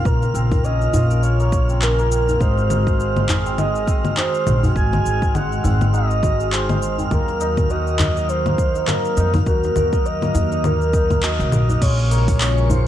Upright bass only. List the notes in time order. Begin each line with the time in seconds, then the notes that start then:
0.05 A#1
0.34 A#1
0.93 A#1
2.41 G#1
4.47 A#1
4.76 G#1
5.05 G#1
5.65 G#1
7.11 D#2
9.17 F2
9.46 D#2
9.76 D#2
10.34 D#2
11.39 C#2
11.52 A#1
11.82 A#1